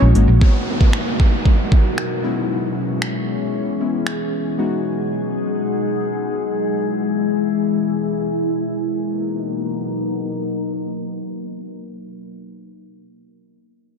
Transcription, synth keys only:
0.15 F#3 G#3 A#3 C#4 F#4
0.41 A#3 B3 D#4 F#4
2.23 G#3 B3 C#4 E4
3.80 G#3 B3 C#4 E4
4.58 G#3 B3 D#4 F#4

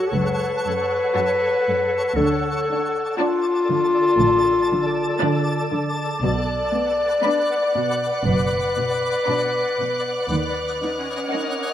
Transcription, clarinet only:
Already playing: F#4
0.13 B4
2.16 A4
3.17 F4
6.23 D5
8.25 B4
10.28 B4
11.31 A#4

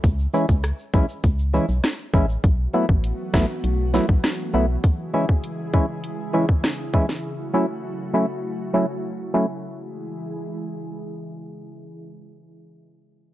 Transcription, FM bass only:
0.04 C#2
0.49 C#2
0.94 B1
1.24 C#2
1.69 B1
2.14 A1
2.44 B1
2.89 A1
3.34 A1
3.64 B1
4.09 B1
4.54 B1

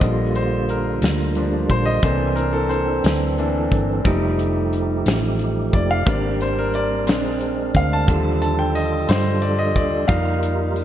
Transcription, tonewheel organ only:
0.02 D3 G3 A#3 D#4
0.09 F4
2.03 E3 C4 D4 A4
4.06 F3 A3 D#4 G4
6.06 G3 B3 D4 A#4
6.13 C4
7.08 G#3 C4 D4 A#4
8.10 D3 G3 F4 A4
10.08 G3 D#4 F4 A#4

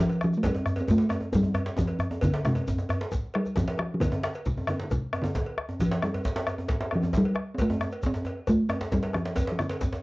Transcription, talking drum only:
0.00 F3
0.24 F3
0.37 A3
0.46 G3
0.81 C4
0.91 A3
1.35 G3
1.79 F3
2.24 D3
2.46 C3
3.35 G3
3.56 F3
3.79 F3
3.94 F3
4.00 D3
4.46 C3
4.69 D3
4.83 D3
4.91 C3
5.22 D3
5.81 F3
6.03 G3
6.95 F3
7.17 G3
7.54 C4
7.61 A3
8.06 C4
8.49 A3
8.93 G3
9.15 F3
9.52 F3
9.60 D3

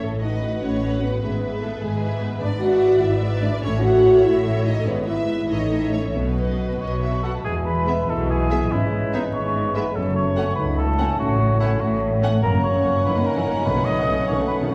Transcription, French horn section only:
0.02 A3
0.23 D#4
0.62 C#4
1.00 B3
1.60 A3
1.80 G#3
2.20 B3
2.41 D4
2.59 F#4
3.01 E4
3.42 D4
3.61 C#4
3.81 F#4
4.23 E4
4.65 D#4
4.87 B3
5.07 E4
5.50 D#4
5.94 C#4
6.15 B3
8.08 E4
8.72 C#4
9.36 B3
9.97 C#4
10.58 D#4
11.20 C#4
11.82 A3
12.43 C#4
13.06 D#4
14.29 C#4

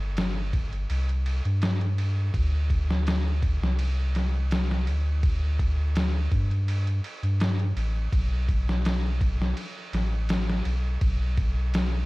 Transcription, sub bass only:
Already playing: G1
0.90 C2
1.45 G2
2.34 D2
3.62 C2
4.87 D2
6.32 G2
7.23 G2
7.76 A1
8.12 B1
9.93 A1
10.65 B1
11.01 B1

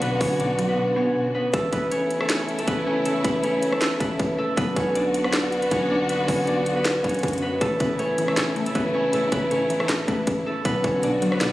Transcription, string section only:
Already playing: D3 B3 F#4
1.53 C#3 A3 E4
4.57 D3 B3 F#4
7.61 C#3 A3 E4
10.65 D3 B3 F#4

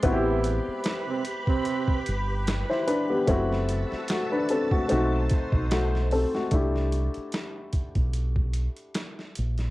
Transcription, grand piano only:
0.03 B3 C4 E4 F#4
0.13 G4
2.70 E4 C5
2.87 D4 B4
3.10 B3 G4
3.27 A3 C4 E4 F#4
4.10 A3 F#4
4.32 D4 B4
4.50 C4 A4
4.72 A3 F#4
4.89 A3 C4 D#4 F#4
5.71 A3 F#4
6.12 C4 A4
6.35 A3 F#4
6.51 A3 D4 E4 G4

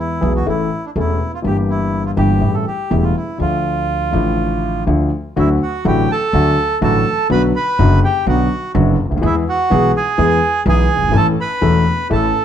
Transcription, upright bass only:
Already playing: E2
0.22 B1
0.47 A1
0.96 E1
1.45 G1
2.17 G1
2.42 A1
2.91 E1
3.40 D2
4.13 A1
4.87 D2
5.37 D2
5.85 A1
6.33 D2
6.82 A1
7.30 B1
7.79 F#1
8.26 B1
8.75 F#1
9.05 C#2
9.12 D2
9.17 D#2
9.23 E2
9.72 B1
10.18 E2
10.66 B1
10.97 F#1
11.02 G1
11.08 G#1
11.14 A1
11.62 E1
12.11 A1

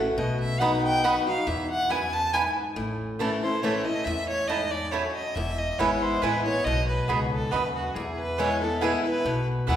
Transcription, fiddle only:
0.17 D#5
0.40 E5
0.59 F#5
0.84 G5
1.04 F#5
1.28 F5
1.47 E5
1.70 F#5
1.91 G#5
2.13 A5
2.33 G#5
3.43 C5
3.63 C#5
3.85 D#5
4.05 E5
4.28 C#5
4.48 D#5
4.71 D5
4.92 C#5
5.15 D#5
5.35 E5
5.58 D#5
5.79 C#5
6.02 C5
6.22 B4
6.45 C#5
6.64 D#5
6.88 B4
7.09 G#4
7.32 A4
7.51 B4
7.75 F#4
7.94 G#4
8.18 B4
8.39 C#5
8.61 A4
8.81 G#4
9.05 B4
9.68 F#5

